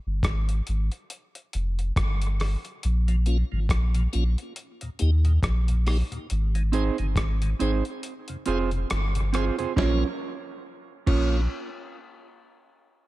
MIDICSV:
0, 0, Header, 1, 5, 480
1, 0, Start_track
1, 0, Tempo, 867052
1, 1568, Time_signature, 4, 2, 24, 8
1, 7239, End_track
2, 0, Start_track
2, 0, Title_t, "Clean electric guitar"
2, 0, Program_c, 0, 27
2, 3721, Note_on_c, 0, 60, 82
2, 3725, Note_on_c, 0, 63, 91
2, 3731, Note_on_c, 0, 68, 93
2, 3734, Note_on_c, 0, 72, 86
2, 3848, Note_off_c, 0, 60, 0
2, 3850, Note_off_c, 0, 63, 0
2, 3853, Note_off_c, 0, 68, 0
2, 3855, Note_off_c, 0, 72, 0
2, 4204, Note_on_c, 0, 60, 74
2, 4208, Note_on_c, 0, 63, 72
2, 4212, Note_on_c, 0, 68, 68
2, 4215, Note_on_c, 0, 72, 87
2, 4330, Note_off_c, 0, 60, 0
2, 4332, Note_off_c, 0, 63, 0
2, 4334, Note_off_c, 0, 68, 0
2, 4336, Note_off_c, 0, 72, 0
2, 4683, Note_on_c, 0, 60, 82
2, 4687, Note_on_c, 0, 65, 90
2, 4691, Note_on_c, 0, 68, 101
2, 4691, Note_on_c, 0, 72, 94
2, 4810, Note_off_c, 0, 60, 0
2, 4811, Note_off_c, 0, 65, 0
2, 4813, Note_off_c, 0, 68, 0
2, 4814, Note_off_c, 0, 72, 0
2, 5163, Note_on_c, 0, 60, 72
2, 5169, Note_on_c, 0, 65, 84
2, 5172, Note_on_c, 0, 68, 83
2, 5175, Note_on_c, 0, 72, 78
2, 5290, Note_off_c, 0, 60, 0
2, 5293, Note_off_c, 0, 65, 0
2, 5294, Note_off_c, 0, 68, 0
2, 5296, Note_off_c, 0, 72, 0
2, 5306, Note_on_c, 0, 72, 70
2, 5308, Note_on_c, 0, 68, 67
2, 5314, Note_on_c, 0, 65, 55
2, 5317, Note_on_c, 0, 60, 52
2, 5377, Note_off_c, 0, 72, 0
2, 5378, Note_off_c, 0, 68, 0
2, 5381, Note_off_c, 0, 65, 0
2, 5383, Note_off_c, 0, 60, 0
2, 5405, Note_on_c, 0, 61, 85
2, 5409, Note_on_c, 0, 65, 86
2, 5411, Note_on_c, 0, 70, 78
2, 5411, Note_on_c, 0, 73, 86
2, 5565, Note_off_c, 0, 61, 0
2, 5567, Note_off_c, 0, 65, 0
2, 5568, Note_off_c, 0, 70, 0
2, 5568, Note_off_c, 0, 73, 0
2, 6125, Note_on_c, 0, 61, 74
2, 6128, Note_on_c, 0, 65, 82
2, 6131, Note_on_c, 0, 70, 74
2, 6133, Note_on_c, 0, 73, 84
2, 6286, Note_off_c, 0, 61, 0
2, 6287, Note_off_c, 0, 65, 0
2, 6289, Note_off_c, 0, 70, 0
2, 6290, Note_off_c, 0, 73, 0
2, 7239, End_track
3, 0, Start_track
3, 0, Title_t, "Tonewheel organ"
3, 0, Program_c, 1, 16
3, 1704, Note_on_c, 1, 46, 66
3, 1706, Note_on_c, 1, 53, 62
3, 1749, Note_off_c, 1, 46, 0
3, 1750, Note_off_c, 1, 53, 0
3, 1807, Note_on_c, 1, 58, 76
3, 1808, Note_on_c, 1, 61, 72
3, 1811, Note_on_c, 1, 65, 85
3, 1867, Note_off_c, 1, 58, 0
3, 1868, Note_off_c, 1, 61, 0
3, 1869, Note_off_c, 1, 65, 0
3, 1947, Note_on_c, 1, 46, 53
3, 1949, Note_on_c, 1, 53, 56
3, 1990, Note_off_c, 1, 46, 0
3, 1991, Note_off_c, 1, 53, 0
3, 2188, Note_on_c, 1, 53, 63
3, 2189, Note_on_c, 1, 46, 59
3, 2231, Note_off_c, 1, 46, 0
3, 2231, Note_off_c, 1, 53, 0
3, 2285, Note_on_c, 1, 58, 72
3, 2286, Note_on_c, 1, 61, 69
3, 2287, Note_on_c, 1, 65, 85
3, 2346, Note_off_c, 1, 58, 0
3, 2346, Note_off_c, 1, 61, 0
3, 2347, Note_off_c, 1, 65, 0
3, 2670, Note_on_c, 1, 46, 56
3, 2671, Note_on_c, 1, 39, 56
3, 2712, Note_off_c, 1, 39, 0
3, 2712, Note_off_c, 1, 46, 0
3, 2765, Note_on_c, 1, 58, 79
3, 2766, Note_on_c, 1, 63, 71
3, 2767, Note_on_c, 1, 67, 90
3, 2826, Note_off_c, 1, 58, 0
3, 2826, Note_off_c, 1, 63, 0
3, 2827, Note_off_c, 1, 67, 0
3, 2905, Note_on_c, 1, 39, 60
3, 2906, Note_on_c, 1, 46, 53
3, 2949, Note_off_c, 1, 39, 0
3, 2949, Note_off_c, 1, 46, 0
3, 3146, Note_on_c, 1, 39, 62
3, 3147, Note_on_c, 1, 46, 63
3, 3189, Note_off_c, 1, 39, 0
3, 3190, Note_off_c, 1, 46, 0
3, 3247, Note_on_c, 1, 58, 77
3, 3248, Note_on_c, 1, 63, 67
3, 3250, Note_on_c, 1, 67, 85
3, 3307, Note_off_c, 1, 58, 0
3, 3308, Note_off_c, 1, 63, 0
3, 3308, Note_off_c, 1, 67, 0
3, 3386, Note_on_c, 1, 39, 58
3, 3386, Note_on_c, 1, 46, 58
3, 3429, Note_off_c, 1, 46, 0
3, 3430, Note_off_c, 1, 39, 0
3, 3627, Note_on_c, 1, 44, 58
3, 3627, Note_on_c, 1, 51, 58
3, 3670, Note_off_c, 1, 44, 0
3, 3670, Note_off_c, 1, 51, 0
3, 3724, Note_on_c, 1, 60, 79
3, 3725, Note_on_c, 1, 63, 73
3, 3729, Note_on_c, 1, 68, 84
3, 3785, Note_off_c, 1, 60, 0
3, 3786, Note_off_c, 1, 63, 0
3, 3788, Note_off_c, 1, 68, 0
3, 3868, Note_on_c, 1, 44, 57
3, 3868, Note_on_c, 1, 51, 52
3, 3911, Note_off_c, 1, 44, 0
3, 3911, Note_off_c, 1, 51, 0
3, 4107, Note_on_c, 1, 44, 60
3, 4109, Note_on_c, 1, 51, 56
3, 4150, Note_off_c, 1, 44, 0
3, 4151, Note_off_c, 1, 51, 0
3, 4210, Note_on_c, 1, 60, 69
3, 4210, Note_on_c, 1, 63, 62
3, 4214, Note_on_c, 1, 68, 83
3, 4269, Note_off_c, 1, 60, 0
3, 4269, Note_off_c, 1, 63, 0
3, 4270, Note_off_c, 1, 68, 0
3, 4591, Note_on_c, 1, 48, 58
3, 4592, Note_on_c, 1, 41, 59
3, 4632, Note_off_c, 1, 41, 0
3, 4632, Note_off_c, 1, 48, 0
3, 4692, Note_on_c, 1, 60, 78
3, 4696, Note_on_c, 1, 65, 74
3, 4697, Note_on_c, 1, 68, 88
3, 4750, Note_off_c, 1, 60, 0
3, 4751, Note_off_c, 1, 65, 0
3, 4752, Note_off_c, 1, 68, 0
3, 4828, Note_on_c, 1, 48, 54
3, 4829, Note_on_c, 1, 41, 63
3, 4871, Note_off_c, 1, 41, 0
3, 4871, Note_off_c, 1, 48, 0
3, 5070, Note_on_c, 1, 41, 64
3, 5071, Note_on_c, 1, 48, 66
3, 5112, Note_off_c, 1, 41, 0
3, 5112, Note_off_c, 1, 48, 0
3, 5173, Note_on_c, 1, 60, 76
3, 5173, Note_on_c, 1, 65, 64
3, 5175, Note_on_c, 1, 68, 79
3, 5230, Note_off_c, 1, 60, 0
3, 5230, Note_off_c, 1, 65, 0
3, 5231, Note_off_c, 1, 68, 0
3, 5311, Note_on_c, 1, 41, 61
3, 5312, Note_on_c, 1, 48, 63
3, 5353, Note_off_c, 1, 41, 0
3, 5353, Note_off_c, 1, 48, 0
3, 5409, Note_on_c, 1, 58, 81
3, 5411, Note_on_c, 1, 61, 74
3, 5413, Note_on_c, 1, 65, 93
3, 5556, Note_off_c, 1, 58, 0
3, 5557, Note_off_c, 1, 61, 0
3, 5558, Note_off_c, 1, 65, 0
3, 6130, Note_on_c, 1, 58, 78
3, 6134, Note_on_c, 1, 61, 79
3, 6134, Note_on_c, 1, 65, 94
3, 6315, Note_off_c, 1, 58, 0
3, 6317, Note_off_c, 1, 61, 0
3, 6317, Note_off_c, 1, 65, 0
3, 7239, End_track
4, 0, Start_track
4, 0, Title_t, "Sub bass"
4, 0, Program_c, 2, 38
4, 38, Note_on_c, 2, 31, 79
4, 122, Note_off_c, 2, 31, 0
4, 132, Note_on_c, 2, 32, 93
4, 339, Note_off_c, 2, 32, 0
4, 383, Note_on_c, 2, 32, 94
4, 497, Note_off_c, 2, 32, 0
4, 859, Note_on_c, 2, 29, 104
4, 1063, Note_off_c, 2, 29, 0
4, 1091, Note_on_c, 2, 31, 101
4, 1419, Note_off_c, 2, 31, 0
4, 1578, Note_on_c, 2, 34, 127
4, 1902, Note_off_c, 2, 34, 0
4, 1954, Note_on_c, 2, 32, 86
4, 2039, Note_off_c, 2, 32, 0
4, 2048, Note_on_c, 2, 34, 91
4, 2256, Note_off_c, 2, 34, 0
4, 2297, Note_on_c, 2, 34, 94
4, 2413, Note_off_c, 2, 34, 0
4, 2778, Note_on_c, 2, 39, 106
4, 2982, Note_off_c, 2, 39, 0
4, 3010, Note_on_c, 2, 34, 101
4, 3338, Note_off_c, 2, 34, 0
4, 3497, Note_on_c, 2, 32, 112
4, 3822, Note_off_c, 2, 32, 0
4, 3873, Note_on_c, 2, 31, 83
4, 3958, Note_off_c, 2, 31, 0
4, 3967, Note_on_c, 2, 32, 81
4, 4176, Note_off_c, 2, 32, 0
4, 4214, Note_on_c, 2, 32, 88
4, 4331, Note_off_c, 2, 32, 0
4, 4694, Note_on_c, 2, 29, 85
4, 4900, Note_off_c, 2, 29, 0
4, 4938, Note_on_c, 2, 31, 105
4, 5263, Note_off_c, 2, 31, 0
4, 5413, Note_on_c, 2, 34, 103
4, 5558, Note_off_c, 2, 34, 0
4, 6132, Note_on_c, 2, 34, 95
4, 6354, Note_off_c, 2, 34, 0
4, 7239, End_track
5, 0, Start_track
5, 0, Title_t, "Drums"
5, 127, Note_on_c, 9, 36, 106
5, 131, Note_on_c, 9, 42, 75
5, 136, Note_on_c, 9, 37, 116
5, 183, Note_off_c, 9, 36, 0
5, 187, Note_off_c, 9, 42, 0
5, 191, Note_off_c, 9, 37, 0
5, 270, Note_on_c, 9, 42, 57
5, 325, Note_off_c, 9, 42, 0
5, 369, Note_on_c, 9, 42, 64
5, 425, Note_off_c, 9, 42, 0
5, 507, Note_on_c, 9, 42, 36
5, 562, Note_off_c, 9, 42, 0
5, 609, Note_on_c, 9, 42, 84
5, 664, Note_off_c, 9, 42, 0
5, 748, Note_on_c, 9, 42, 55
5, 804, Note_off_c, 9, 42, 0
5, 848, Note_on_c, 9, 42, 71
5, 904, Note_off_c, 9, 42, 0
5, 989, Note_on_c, 9, 42, 36
5, 1045, Note_off_c, 9, 42, 0
5, 1087, Note_on_c, 9, 36, 121
5, 1089, Note_on_c, 9, 42, 88
5, 1093, Note_on_c, 9, 37, 97
5, 1142, Note_off_c, 9, 36, 0
5, 1144, Note_off_c, 9, 42, 0
5, 1148, Note_off_c, 9, 37, 0
5, 1226, Note_on_c, 9, 42, 59
5, 1282, Note_off_c, 9, 42, 0
5, 1328, Note_on_c, 9, 46, 54
5, 1335, Note_on_c, 9, 37, 71
5, 1384, Note_off_c, 9, 46, 0
5, 1390, Note_off_c, 9, 37, 0
5, 1465, Note_on_c, 9, 42, 35
5, 1520, Note_off_c, 9, 42, 0
5, 1568, Note_on_c, 9, 42, 83
5, 1623, Note_off_c, 9, 42, 0
5, 1706, Note_on_c, 9, 42, 48
5, 1761, Note_off_c, 9, 42, 0
5, 1804, Note_on_c, 9, 42, 60
5, 1860, Note_off_c, 9, 42, 0
5, 2044, Note_on_c, 9, 36, 93
5, 2048, Note_on_c, 9, 42, 89
5, 2053, Note_on_c, 9, 37, 122
5, 2099, Note_off_c, 9, 36, 0
5, 2103, Note_off_c, 9, 42, 0
5, 2108, Note_off_c, 9, 37, 0
5, 2184, Note_on_c, 9, 42, 54
5, 2239, Note_off_c, 9, 42, 0
5, 2287, Note_on_c, 9, 42, 59
5, 2342, Note_off_c, 9, 42, 0
5, 2425, Note_on_c, 9, 42, 35
5, 2481, Note_off_c, 9, 42, 0
5, 2524, Note_on_c, 9, 42, 93
5, 2580, Note_off_c, 9, 42, 0
5, 2663, Note_on_c, 9, 42, 51
5, 2719, Note_off_c, 9, 42, 0
5, 2763, Note_on_c, 9, 42, 74
5, 2818, Note_off_c, 9, 42, 0
5, 2905, Note_on_c, 9, 42, 35
5, 2960, Note_off_c, 9, 42, 0
5, 3004, Note_on_c, 9, 36, 115
5, 3008, Note_on_c, 9, 42, 83
5, 3011, Note_on_c, 9, 37, 95
5, 3060, Note_off_c, 9, 36, 0
5, 3063, Note_off_c, 9, 42, 0
5, 3067, Note_off_c, 9, 37, 0
5, 3145, Note_on_c, 9, 42, 55
5, 3201, Note_off_c, 9, 42, 0
5, 3247, Note_on_c, 9, 46, 54
5, 3254, Note_on_c, 9, 37, 70
5, 3303, Note_off_c, 9, 46, 0
5, 3309, Note_off_c, 9, 37, 0
5, 3388, Note_on_c, 9, 42, 40
5, 3443, Note_off_c, 9, 42, 0
5, 3487, Note_on_c, 9, 42, 87
5, 3542, Note_off_c, 9, 42, 0
5, 3627, Note_on_c, 9, 42, 50
5, 3682, Note_off_c, 9, 42, 0
5, 3727, Note_on_c, 9, 42, 68
5, 3782, Note_off_c, 9, 42, 0
5, 3865, Note_on_c, 9, 42, 31
5, 3921, Note_off_c, 9, 42, 0
5, 3962, Note_on_c, 9, 36, 102
5, 3967, Note_on_c, 9, 42, 85
5, 3972, Note_on_c, 9, 37, 114
5, 4018, Note_off_c, 9, 36, 0
5, 4022, Note_off_c, 9, 42, 0
5, 4027, Note_off_c, 9, 37, 0
5, 4106, Note_on_c, 9, 42, 55
5, 4161, Note_off_c, 9, 42, 0
5, 4209, Note_on_c, 9, 42, 62
5, 4264, Note_off_c, 9, 42, 0
5, 4346, Note_on_c, 9, 42, 33
5, 4401, Note_off_c, 9, 42, 0
5, 4446, Note_on_c, 9, 42, 99
5, 4501, Note_off_c, 9, 42, 0
5, 4582, Note_on_c, 9, 42, 53
5, 4638, Note_off_c, 9, 42, 0
5, 4681, Note_on_c, 9, 42, 74
5, 4737, Note_off_c, 9, 42, 0
5, 4824, Note_on_c, 9, 42, 34
5, 4879, Note_off_c, 9, 42, 0
5, 4927, Note_on_c, 9, 42, 86
5, 4931, Note_on_c, 9, 37, 102
5, 4983, Note_off_c, 9, 42, 0
5, 4987, Note_off_c, 9, 37, 0
5, 5066, Note_on_c, 9, 42, 63
5, 5122, Note_off_c, 9, 42, 0
5, 5169, Note_on_c, 9, 42, 77
5, 5175, Note_on_c, 9, 37, 72
5, 5224, Note_off_c, 9, 42, 0
5, 5230, Note_off_c, 9, 37, 0
5, 5307, Note_on_c, 9, 42, 37
5, 5362, Note_off_c, 9, 42, 0
5, 5408, Note_on_c, 9, 36, 106
5, 5416, Note_on_c, 9, 38, 91
5, 5463, Note_off_c, 9, 36, 0
5, 5471, Note_off_c, 9, 38, 0
5, 6129, Note_on_c, 9, 36, 88
5, 6130, Note_on_c, 9, 49, 84
5, 6185, Note_off_c, 9, 36, 0
5, 6185, Note_off_c, 9, 49, 0
5, 7239, End_track
0, 0, End_of_file